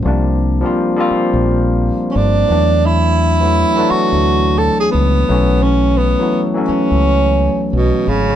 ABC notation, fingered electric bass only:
X:1
M:4/4
L:1/16
Q:"Swing 16ths" 1/4=86
K:Bdor
V:1 name="Fingered electric bass" clef=bass
=C,,4 z3 _B,,,4 z =G,,,2 E,,2- | E,,6 z D,,4 z C,,2 B,,,2- | B,,,4 z3 C,,4 z B,,, z G,,, A,,, |]